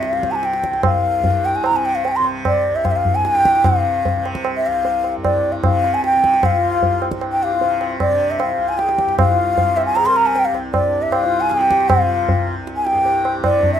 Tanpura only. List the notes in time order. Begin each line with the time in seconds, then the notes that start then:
Already playing: C2 G2 C3
0.18 C3
0.70 C2
1.20 G2
1.70 C3
2.20 C3
2.69 C2
3.18 G2
3.68 C3
4.17 C3
4.67 C2
5.17 G2
5.66 C3
6.16 C3
6.64 C2
7.13 G2
7.61 C3
8.10 C3
8.57 C2
9.06 G2
9.55 C3
10.04 C3
10.52 C2
11.01 G2
11.50 C3
11.97 C3
12.46 C2
12.93 G2
13.39 C3